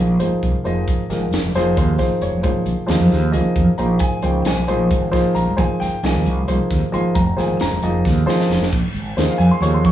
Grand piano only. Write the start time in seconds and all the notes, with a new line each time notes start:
Already playing: F3 A#3 D#4 G#4 D#5
0.19 F3 A#3 D#4 G#4 C5
0.64 F3 A#3 D#4 G#4 C5 D#5
1.09 F3 A#3 D#4 G#4 A#4
1.55 F3 A#3 D#4 G#4 C5
1.78 C5
1.98 F3 A#3 D#4 G#4 C5
2.22 C#5
2.42 F3 A#3 D#4 G#4 C5
2.87 F3 A#3 D#4 G#4 C5
3.32 F3 A#3 D#4 G#4 D#5
3.78 F3 A#3 D#4 G#4 C5 A#5
4.00 G#5
4.22 F3 A#3 D#4 G#4 C5 G5
4.47 G#5
4.68 F3 A#3 D#4 G#4 C5
5.11 F3 A#3 D#4 G#4 C5
5.35 A#5
5.57 F3 A#3 D#4 G#4 C5 G#5
5.80 G5
6.03 F3 A#3 D#4 G#4 D#5 G#5
6.47 F3 A#3 D#4 G#4 C5
6.92 F3 A#3 D#4 G#4 D#5 C6
7.15 A#5
7.36 F3 A#3 D#4 G#4 C5 G#5
7.61 A#5
7.83 F3 A#3 D#4 G#4 D#5
8.26 F3 A#3 D#4 G#4 C5
9.17 F3 A#3 D#4 G#4 C5
9.30 F5
9.38 G#5
9.51 C6
9.62 F3 A#3 D#4 G#4 C#5 C#6
9.74 C6
9.85 C#6